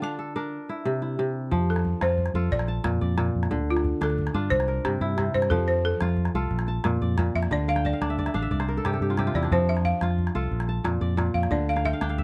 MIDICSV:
0, 0, Header, 1, 5, 480
1, 0, Start_track
1, 0, Key_signature, -1, "major"
1, 0, Tempo, 333148
1, 2183, Time_signature, 12, 3, 24, 8
1, 17628, End_track
2, 0, Start_track
2, 0, Title_t, "Balafon"
2, 0, Program_c, 0, 12
2, 52, Note_on_c, 0, 81, 75
2, 940, Note_off_c, 0, 81, 0
2, 2451, Note_on_c, 0, 69, 71
2, 2915, Note_on_c, 0, 72, 89
2, 2929, Note_off_c, 0, 69, 0
2, 3577, Note_off_c, 0, 72, 0
2, 3631, Note_on_c, 0, 74, 104
2, 4295, Note_off_c, 0, 74, 0
2, 5338, Note_on_c, 0, 65, 75
2, 5809, Note_on_c, 0, 69, 89
2, 5811, Note_off_c, 0, 65, 0
2, 6463, Note_off_c, 0, 69, 0
2, 6489, Note_on_c, 0, 72, 111
2, 7162, Note_off_c, 0, 72, 0
2, 7700, Note_on_c, 0, 72, 104
2, 7926, Note_on_c, 0, 69, 102
2, 7946, Note_off_c, 0, 72, 0
2, 8179, Note_off_c, 0, 69, 0
2, 8179, Note_on_c, 0, 72, 86
2, 8401, Note_off_c, 0, 72, 0
2, 8427, Note_on_c, 0, 69, 85
2, 9565, Note_off_c, 0, 69, 0
2, 10597, Note_on_c, 0, 76, 99
2, 10701, Note_off_c, 0, 76, 0
2, 10843, Note_on_c, 0, 74, 95
2, 11078, Note_off_c, 0, 74, 0
2, 11079, Note_on_c, 0, 77, 98
2, 11316, Note_off_c, 0, 77, 0
2, 11327, Note_on_c, 0, 74, 78
2, 12458, Note_off_c, 0, 74, 0
2, 13472, Note_on_c, 0, 74, 75
2, 13691, Note_off_c, 0, 74, 0
2, 13724, Note_on_c, 0, 72, 84
2, 13961, Note_off_c, 0, 72, 0
2, 13963, Note_on_c, 0, 76, 88
2, 14192, Note_on_c, 0, 77, 88
2, 14201, Note_off_c, 0, 76, 0
2, 15332, Note_off_c, 0, 77, 0
2, 16343, Note_on_c, 0, 77, 76
2, 16591, Note_on_c, 0, 74, 78
2, 16592, Note_off_c, 0, 77, 0
2, 16836, Note_off_c, 0, 74, 0
2, 16846, Note_on_c, 0, 77, 84
2, 17060, Note_off_c, 0, 77, 0
2, 17081, Note_on_c, 0, 76, 86
2, 17628, Note_off_c, 0, 76, 0
2, 17628, End_track
3, 0, Start_track
3, 0, Title_t, "Kora"
3, 0, Program_c, 1, 46
3, 0, Note_on_c, 1, 50, 78
3, 0, Note_on_c, 1, 65, 63
3, 0, Note_on_c, 1, 74, 62
3, 29, Note_on_c, 1, 62, 68
3, 183, Note_off_c, 1, 74, 0
3, 270, Note_on_c, 1, 69, 53
3, 511, Note_off_c, 1, 62, 0
3, 514, Note_on_c, 1, 70, 65
3, 516, Note_on_c, 1, 62, 75
3, 816, Note_off_c, 1, 50, 0
3, 999, Note_on_c, 1, 64, 59
3, 1085, Note_off_c, 1, 65, 0
3, 1231, Note_on_c, 1, 48, 78
3, 1463, Note_off_c, 1, 64, 0
3, 1469, Note_on_c, 1, 64, 60
3, 1696, Note_off_c, 1, 48, 0
3, 1714, Note_on_c, 1, 48, 76
3, 2168, Note_off_c, 1, 69, 0
3, 2182, Note_on_c, 1, 53, 85
3, 2254, Note_off_c, 1, 48, 0
3, 2268, Note_off_c, 1, 64, 0
3, 2347, Note_off_c, 1, 70, 0
3, 2900, Note_on_c, 1, 65, 70
3, 2936, Note_off_c, 1, 62, 0
3, 3379, Note_off_c, 1, 65, 0
3, 3384, Note_on_c, 1, 65, 81
3, 3384, Note_on_c, 1, 69, 61
3, 3692, Note_off_c, 1, 53, 0
3, 3863, Note_on_c, 1, 81, 67
3, 4093, Note_on_c, 1, 46, 85
3, 4179, Note_off_c, 1, 69, 0
3, 4340, Note_on_c, 1, 74, 65
3, 4558, Note_off_c, 1, 46, 0
3, 4575, Note_on_c, 1, 46, 81
3, 4662, Note_off_c, 1, 81, 0
3, 5054, Note_on_c, 1, 50, 81
3, 5130, Note_off_c, 1, 46, 0
3, 5565, Note_off_c, 1, 65, 0
3, 5776, Note_on_c, 1, 62, 73
3, 5937, Note_off_c, 1, 74, 0
3, 6253, Note_off_c, 1, 62, 0
3, 6259, Note_on_c, 1, 62, 83
3, 6260, Note_on_c, 1, 65, 71
3, 6569, Note_off_c, 1, 50, 0
3, 6740, Note_on_c, 1, 70, 57
3, 6985, Note_on_c, 1, 48, 91
3, 7221, Note_on_c, 1, 64, 76
3, 7307, Note_off_c, 1, 65, 0
3, 7443, Note_off_c, 1, 48, 0
3, 7461, Note_on_c, 1, 48, 78
3, 7940, Note_on_c, 1, 53, 80
3, 8009, Note_off_c, 1, 48, 0
3, 8026, Note_off_c, 1, 64, 0
3, 8574, Note_off_c, 1, 70, 0
3, 8668, Note_on_c, 1, 65, 80
3, 8679, Note_off_c, 1, 62, 0
3, 9143, Note_off_c, 1, 65, 0
3, 9149, Note_on_c, 1, 65, 91
3, 9149, Note_on_c, 1, 69, 76
3, 9450, Note_off_c, 1, 53, 0
3, 9622, Note_on_c, 1, 81, 66
3, 9864, Note_on_c, 1, 46, 91
3, 9951, Note_off_c, 1, 69, 0
3, 10110, Note_on_c, 1, 74, 69
3, 10335, Note_off_c, 1, 46, 0
3, 10352, Note_on_c, 1, 46, 73
3, 10439, Note_off_c, 1, 81, 0
3, 10822, Note_on_c, 1, 50, 80
3, 10891, Note_off_c, 1, 46, 0
3, 11067, Note_on_c, 1, 77, 69
3, 11179, Note_on_c, 1, 79, 70
3, 11306, Note_on_c, 1, 81, 71
3, 11329, Note_off_c, 1, 65, 0
3, 11420, Note_off_c, 1, 77, 0
3, 11426, Note_on_c, 1, 77, 61
3, 11541, Note_off_c, 1, 74, 0
3, 11546, Note_on_c, 1, 74, 66
3, 11548, Note_on_c, 1, 62, 76
3, 11668, Note_on_c, 1, 76, 67
3, 11755, Note_off_c, 1, 77, 0
3, 11788, Note_off_c, 1, 74, 0
3, 11794, Note_on_c, 1, 74, 68
3, 11906, Note_off_c, 1, 76, 0
3, 11911, Note_on_c, 1, 76, 65
3, 12013, Note_off_c, 1, 62, 0
3, 12018, Note_on_c, 1, 62, 83
3, 12025, Note_on_c, 1, 77, 71
3, 12130, Note_off_c, 1, 76, 0
3, 12136, Note_on_c, 1, 76, 71
3, 12254, Note_off_c, 1, 74, 0
3, 12260, Note_on_c, 1, 74, 70
3, 12333, Note_off_c, 1, 50, 0
3, 12390, Note_on_c, 1, 72, 66
3, 12513, Note_on_c, 1, 70, 61
3, 12521, Note_off_c, 1, 79, 0
3, 12599, Note_off_c, 1, 81, 0
3, 12641, Note_on_c, 1, 69, 69
3, 12758, Note_on_c, 1, 48, 75
3, 12759, Note_on_c, 1, 67, 78
3, 12865, Note_off_c, 1, 69, 0
3, 12871, Note_on_c, 1, 69, 64
3, 12958, Note_off_c, 1, 70, 0
3, 12989, Note_off_c, 1, 67, 0
3, 12995, Note_on_c, 1, 67, 67
3, 13110, Note_on_c, 1, 65, 62
3, 13197, Note_off_c, 1, 76, 0
3, 13217, Note_off_c, 1, 48, 0
3, 13230, Note_off_c, 1, 67, 0
3, 13234, Note_on_c, 1, 48, 79
3, 13235, Note_on_c, 1, 67, 75
3, 13347, Note_off_c, 1, 65, 0
3, 13353, Note_on_c, 1, 65, 74
3, 13464, Note_off_c, 1, 77, 0
3, 13479, Note_on_c, 1, 64, 74
3, 13595, Note_off_c, 1, 62, 0
3, 13601, Note_on_c, 1, 62, 58
3, 13715, Note_on_c, 1, 53, 81
3, 13775, Note_off_c, 1, 48, 0
3, 13801, Note_off_c, 1, 64, 0
3, 13856, Note_off_c, 1, 74, 0
3, 14101, Note_off_c, 1, 72, 0
3, 14437, Note_off_c, 1, 65, 0
3, 14443, Note_on_c, 1, 65, 79
3, 14770, Note_off_c, 1, 69, 0
3, 14905, Note_off_c, 1, 65, 0
3, 14911, Note_on_c, 1, 65, 82
3, 14912, Note_on_c, 1, 69, 68
3, 15217, Note_off_c, 1, 53, 0
3, 15270, Note_off_c, 1, 67, 0
3, 15397, Note_on_c, 1, 81, 63
3, 15624, Note_on_c, 1, 46, 78
3, 15710, Note_off_c, 1, 69, 0
3, 15865, Note_on_c, 1, 74, 71
3, 16021, Note_off_c, 1, 62, 0
3, 16080, Note_off_c, 1, 46, 0
3, 16098, Note_on_c, 1, 46, 81
3, 16184, Note_off_c, 1, 81, 0
3, 16579, Note_on_c, 1, 50, 78
3, 16658, Note_off_c, 1, 46, 0
3, 16944, Note_on_c, 1, 77, 66
3, 17069, Note_on_c, 1, 79, 69
3, 17091, Note_off_c, 1, 65, 0
3, 17187, Note_off_c, 1, 77, 0
3, 17193, Note_on_c, 1, 77, 68
3, 17309, Note_off_c, 1, 79, 0
3, 17310, Note_on_c, 1, 62, 77
3, 17315, Note_on_c, 1, 79, 72
3, 17418, Note_off_c, 1, 77, 0
3, 17424, Note_on_c, 1, 77, 71
3, 17461, Note_off_c, 1, 74, 0
3, 17554, Note_on_c, 1, 76, 73
3, 17628, Note_off_c, 1, 50, 0
3, 17628, Note_off_c, 1, 62, 0
3, 17628, Note_off_c, 1, 76, 0
3, 17628, Note_off_c, 1, 77, 0
3, 17628, Note_off_c, 1, 79, 0
3, 17628, End_track
4, 0, Start_track
4, 0, Title_t, "Fingered electric bass"
4, 0, Program_c, 2, 33
4, 2191, Note_on_c, 2, 41, 82
4, 2774, Note_off_c, 2, 41, 0
4, 2904, Note_on_c, 2, 41, 79
4, 3294, Note_off_c, 2, 41, 0
4, 3371, Note_on_c, 2, 41, 92
4, 3571, Note_off_c, 2, 41, 0
4, 3615, Note_on_c, 2, 34, 97
4, 4008, Note_off_c, 2, 34, 0
4, 4103, Note_on_c, 2, 41, 74
4, 4297, Note_off_c, 2, 41, 0
4, 4353, Note_on_c, 2, 41, 92
4, 4739, Note_off_c, 2, 41, 0
4, 4831, Note_on_c, 2, 41, 86
4, 5021, Note_off_c, 2, 41, 0
4, 5069, Note_on_c, 2, 38, 83
4, 5652, Note_off_c, 2, 38, 0
4, 5781, Note_on_c, 2, 38, 77
4, 6171, Note_off_c, 2, 38, 0
4, 6257, Note_on_c, 2, 43, 92
4, 6453, Note_off_c, 2, 43, 0
4, 6504, Note_on_c, 2, 36, 102
4, 6893, Note_off_c, 2, 36, 0
4, 6981, Note_on_c, 2, 43, 76
4, 7175, Note_off_c, 2, 43, 0
4, 7216, Note_on_c, 2, 43, 98
4, 7608, Note_off_c, 2, 43, 0
4, 7702, Note_on_c, 2, 43, 81
4, 7896, Note_off_c, 2, 43, 0
4, 7946, Note_on_c, 2, 41, 96
4, 8530, Note_off_c, 2, 41, 0
4, 8659, Note_on_c, 2, 41, 85
4, 9050, Note_off_c, 2, 41, 0
4, 9140, Note_on_c, 2, 36, 91
4, 9335, Note_off_c, 2, 36, 0
4, 9377, Note_on_c, 2, 34, 107
4, 9770, Note_off_c, 2, 34, 0
4, 9869, Note_on_c, 2, 41, 69
4, 10061, Note_off_c, 2, 41, 0
4, 10111, Note_on_c, 2, 41, 100
4, 10498, Note_off_c, 2, 41, 0
4, 10587, Note_on_c, 2, 41, 85
4, 10780, Note_off_c, 2, 41, 0
4, 10824, Note_on_c, 2, 38, 97
4, 11411, Note_off_c, 2, 38, 0
4, 11544, Note_on_c, 2, 38, 74
4, 11935, Note_off_c, 2, 38, 0
4, 12021, Note_on_c, 2, 33, 84
4, 12217, Note_off_c, 2, 33, 0
4, 12259, Note_on_c, 2, 36, 104
4, 12652, Note_off_c, 2, 36, 0
4, 12740, Note_on_c, 2, 43, 76
4, 12937, Note_off_c, 2, 43, 0
4, 12978, Note_on_c, 2, 43, 89
4, 13372, Note_off_c, 2, 43, 0
4, 13460, Note_on_c, 2, 40, 84
4, 13658, Note_off_c, 2, 40, 0
4, 13707, Note_on_c, 2, 41, 86
4, 14294, Note_off_c, 2, 41, 0
4, 14426, Note_on_c, 2, 41, 75
4, 14818, Note_off_c, 2, 41, 0
4, 14916, Note_on_c, 2, 36, 83
4, 15108, Note_off_c, 2, 36, 0
4, 15148, Note_on_c, 2, 34, 95
4, 15539, Note_off_c, 2, 34, 0
4, 15623, Note_on_c, 2, 41, 66
4, 15820, Note_off_c, 2, 41, 0
4, 15866, Note_on_c, 2, 41, 92
4, 16258, Note_off_c, 2, 41, 0
4, 16342, Note_on_c, 2, 41, 76
4, 16540, Note_off_c, 2, 41, 0
4, 16584, Note_on_c, 2, 38, 93
4, 17173, Note_off_c, 2, 38, 0
4, 17311, Note_on_c, 2, 38, 88
4, 17628, Note_off_c, 2, 38, 0
4, 17628, End_track
5, 0, Start_track
5, 0, Title_t, "Calabash"
5, 2188, Note_on_c, 9, 36, 63
5, 2332, Note_off_c, 9, 36, 0
5, 2538, Note_on_c, 9, 38, 44
5, 2662, Note_on_c, 9, 36, 61
5, 2682, Note_off_c, 9, 38, 0
5, 2806, Note_off_c, 9, 36, 0
5, 2901, Note_on_c, 9, 38, 58
5, 3025, Note_off_c, 9, 38, 0
5, 3025, Note_on_c, 9, 38, 21
5, 3137, Note_on_c, 9, 36, 54
5, 3169, Note_off_c, 9, 38, 0
5, 3251, Note_on_c, 9, 38, 49
5, 3281, Note_off_c, 9, 36, 0
5, 3396, Note_off_c, 9, 38, 0
5, 3621, Note_on_c, 9, 36, 57
5, 3737, Note_on_c, 9, 38, 55
5, 3765, Note_off_c, 9, 36, 0
5, 3854, Note_off_c, 9, 38, 0
5, 3854, Note_on_c, 9, 38, 23
5, 3998, Note_off_c, 9, 38, 0
5, 4096, Note_on_c, 9, 36, 65
5, 4096, Note_on_c, 9, 38, 70
5, 4240, Note_off_c, 9, 36, 0
5, 4240, Note_off_c, 9, 38, 0
5, 4576, Note_on_c, 9, 36, 62
5, 4576, Note_on_c, 9, 38, 56
5, 4700, Note_off_c, 9, 38, 0
5, 4700, Note_on_c, 9, 38, 21
5, 4720, Note_off_c, 9, 36, 0
5, 4844, Note_off_c, 9, 38, 0
5, 4940, Note_on_c, 9, 38, 51
5, 5062, Note_on_c, 9, 36, 60
5, 5084, Note_off_c, 9, 38, 0
5, 5206, Note_off_c, 9, 36, 0
5, 5425, Note_on_c, 9, 38, 44
5, 5540, Note_on_c, 9, 36, 61
5, 5570, Note_off_c, 9, 38, 0
5, 5684, Note_off_c, 9, 36, 0
5, 5787, Note_on_c, 9, 38, 57
5, 5905, Note_off_c, 9, 38, 0
5, 5905, Note_on_c, 9, 38, 23
5, 6029, Note_on_c, 9, 36, 60
5, 6049, Note_off_c, 9, 38, 0
5, 6148, Note_on_c, 9, 38, 57
5, 6174, Note_off_c, 9, 36, 0
5, 6292, Note_off_c, 9, 38, 0
5, 6502, Note_on_c, 9, 36, 59
5, 6628, Note_on_c, 9, 38, 52
5, 6646, Note_off_c, 9, 36, 0
5, 6744, Note_off_c, 9, 38, 0
5, 6744, Note_on_c, 9, 38, 22
5, 6888, Note_off_c, 9, 38, 0
5, 6986, Note_on_c, 9, 36, 75
5, 6986, Note_on_c, 9, 38, 64
5, 7130, Note_off_c, 9, 36, 0
5, 7130, Note_off_c, 9, 38, 0
5, 7460, Note_on_c, 9, 36, 57
5, 7460, Note_on_c, 9, 38, 62
5, 7578, Note_off_c, 9, 38, 0
5, 7578, Note_on_c, 9, 38, 20
5, 7604, Note_off_c, 9, 36, 0
5, 7722, Note_off_c, 9, 38, 0
5, 7812, Note_on_c, 9, 38, 56
5, 7928, Note_on_c, 9, 36, 66
5, 7956, Note_off_c, 9, 38, 0
5, 8072, Note_off_c, 9, 36, 0
5, 8652, Note_on_c, 9, 38, 67
5, 8770, Note_off_c, 9, 38, 0
5, 8770, Note_on_c, 9, 38, 22
5, 8885, Note_on_c, 9, 36, 57
5, 8915, Note_off_c, 9, 38, 0
5, 9010, Note_on_c, 9, 38, 48
5, 9029, Note_off_c, 9, 36, 0
5, 9154, Note_off_c, 9, 38, 0
5, 9375, Note_on_c, 9, 36, 65
5, 9492, Note_on_c, 9, 38, 59
5, 9519, Note_off_c, 9, 36, 0
5, 9609, Note_off_c, 9, 38, 0
5, 9609, Note_on_c, 9, 38, 22
5, 9753, Note_off_c, 9, 38, 0
5, 9855, Note_on_c, 9, 36, 68
5, 9855, Note_on_c, 9, 38, 68
5, 9999, Note_off_c, 9, 36, 0
5, 9999, Note_off_c, 9, 38, 0
5, 10339, Note_on_c, 9, 36, 65
5, 10339, Note_on_c, 9, 38, 69
5, 10465, Note_off_c, 9, 38, 0
5, 10465, Note_on_c, 9, 38, 21
5, 10484, Note_off_c, 9, 36, 0
5, 10609, Note_off_c, 9, 38, 0
5, 10699, Note_on_c, 9, 38, 52
5, 10818, Note_off_c, 9, 38, 0
5, 10818, Note_on_c, 9, 36, 67
5, 10818, Note_on_c, 9, 38, 18
5, 10962, Note_off_c, 9, 36, 0
5, 10962, Note_off_c, 9, 38, 0
5, 11182, Note_on_c, 9, 38, 47
5, 11311, Note_on_c, 9, 36, 68
5, 11326, Note_off_c, 9, 38, 0
5, 11456, Note_off_c, 9, 36, 0
5, 11550, Note_on_c, 9, 38, 60
5, 11695, Note_off_c, 9, 38, 0
5, 11792, Note_on_c, 9, 36, 64
5, 11904, Note_on_c, 9, 38, 57
5, 11936, Note_off_c, 9, 36, 0
5, 12024, Note_off_c, 9, 38, 0
5, 12024, Note_on_c, 9, 38, 18
5, 12169, Note_off_c, 9, 38, 0
5, 12270, Note_on_c, 9, 36, 57
5, 12389, Note_on_c, 9, 38, 55
5, 12414, Note_off_c, 9, 36, 0
5, 12514, Note_off_c, 9, 38, 0
5, 12514, Note_on_c, 9, 38, 20
5, 12658, Note_off_c, 9, 38, 0
5, 12750, Note_on_c, 9, 36, 64
5, 12750, Note_on_c, 9, 38, 63
5, 12894, Note_off_c, 9, 36, 0
5, 12894, Note_off_c, 9, 38, 0
5, 13113, Note_on_c, 9, 38, 20
5, 13219, Note_off_c, 9, 38, 0
5, 13219, Note_on_c, 9, 36, 62
5, 13219, Note_on_c, 9, 38, 58
5, 13363, Note_off_c, 9, 36, 0
5, 13363, Note_off_c, 9, 38, 0
5, 13460, Note_on_c, 9, 38, 21
5, 13585, Note_off_c, 9, 38, 0
5, 13585, Note_on_c, 9, 38, 45
5, 13709, Note_on_c, 9, 36, 56
5, 13729, Note_off_c, 9, 38, 0
5, 13853, Note_off_c, 9, 36, 0
5, 14072, Note_on_c, 9, 38, 39
5, 14185, Note_on_c, 9, 36, 49
5, 14216, Note_off_c, 9, 38, 0
5, 14329, Note_off_c, 9, 36, 0
5, 14426, Note_on_c, 9, 38, 58
5, 14556, Note_off_c, 9, 38, 0
5, 14556, Note_on_c, 9, 38, 21
5, 14674, Note_on_c, 9, 36, 51
5, 14700, Note_off_c, 9, 38, 0
5, 14796, Note_on_c, 9, 38, 51
5, 14818, Note_off_c, 9, 36, 0
5, 14941, Note_off_c, 9, 38, 0
5, 15152, Note_on_c, 9, 36, 51
5, 15274, Note_on_c, 9, 38, 57
5, 15296, Note_off_c, 9, 36, 0
5, 15418, Note_off_c, 9, 38, 0
5, 15633, Note_on_c, 9, 36, 63
5, 15633, Note_on_c, 9, 38, 62
5, 15777, Note_off_c, 9, 36, 0
5, 15777, Note_off_c, 9, 38, 0
5, 16115, Note_on_c, 9, 36, 53
5, 16115, Note_on_c, 9, 38, 55
5, 16230, Note_off_c, 9, 38, 0
5, 16230, Note_on_c, 9, 38, 18
5, 16259, Note_off_c, 9, 36, 0
5, 16374, Note_off_c, 9, 38, 0
5, 16471, Note_on_c, 9, 38, 52
5, 16588, Note_on_c, 9, 36, 59
5, 16615, Note_off_c, 9, 38, 0
5, 16732, Note_off_c, 9, 36, 0
5, 16954, Note_on_c, 9, 38, 46
5, 17071, Note_on_c, 9, 36, 58
5, 17098, Note_off_c, 9, 38, 0
5, 17215, Note_off_c, 9, 36, 0
5, 17307, Note_on_c, 9, 38, 59
5, 17436, Note_off_c, 9, 38, 0
5, 17436, Note_on_c, 9, 38, 22
5, 17552, Note_on_c, 9, 36, 61
5, 17580, Note_off_c, 9, 38, 0
5, 17628, Note_off_c, 9, 36, 0
5, 17628, End_track
0, 0, End_of_file